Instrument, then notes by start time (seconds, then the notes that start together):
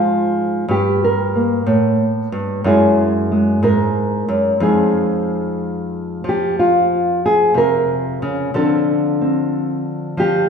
nylon-string guitar
Already playing: G#2 F3 G#3 D#4 F4
0.68 G2 G4
1.04 A#4
1.36 A#3
1.66 A2
2.32 G2
2.64 F#2 G#3 E4 G#4
3.32 G#3
3.63 G#2 A#4
4.28 F#2
4.60 F2 F3 G#3 D#4 G#4
6.24 F3
6.29 G4
6.59 F4
7.26 G#4
7.54 C3 A#4
8.22 C#3
8.54 D3 F3 C4 D4 A4
9.21 C4
10.17 F3 G4